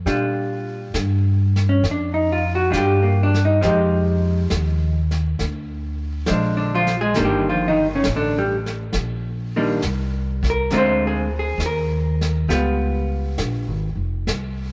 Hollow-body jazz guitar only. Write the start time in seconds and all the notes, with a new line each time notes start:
0.06 G3 D4 F4
1.69 C#4
1.91 D4
2.14 D#4
2.32 F4
2.55 F#4
2.70 G3 D4 F4
2.77 G4
3.02 A#3
3.23 D4
3.45 D#4
3.61 F3 G#3 D#4 G4
6.27 F3 G#3 D4
6.57 D3 D4
6.75 F3 F4
7.01 G#3 G#4
7.16 D#3 G3 A#3 D4
7.25 G3 G4
7.50 F3 F4
7.68 D#3 D#4
7.95 C#3 C#4
8.16 D3 D4
8.38 G2 G3
9.56 D#3 G3 A#3 D4
10.50 A#4
10.71 D3 G#3 C4 F4
10.78 C5
11.07 G#4
11.39 G#4
11.66 A#4
12.49 G3 B3 F4